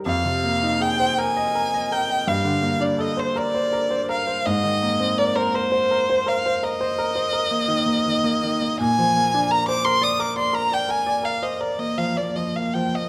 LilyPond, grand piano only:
\new Staff \with { instrumentName = "Grand piano" } { \time 12/8 \key aes \lydian \tempo 4. = 55 f,16 c16 bes16 ees'16 aes'16 c''16 bes'16 ees''16 bes'16 ees''16 bes'16 ees''16 g,16 d16 bes16 d'16 a'16 c''16 bes'16 c''16 bes'16 c''16 bes'16 c''16 | aes,16 ees16 bes16 c'16 bes'16 c''16 bes'16 c''16 bes'16 c''16 bes'16 c''16 bes'16 c''16 bes'16 c''16 bes'16 bes16 ees16 bes16 ees16 bes16 ees16 bes16 | bes,16 f16 bes16 d'16 bes'16 c''16 bes'16 d''16 bes'16 d''16 bes'16 d''16 bes'16 d''16 bes'16 c''16 bes'16 bes16 f16 bes16 f16 bes16 f16 bes16 | }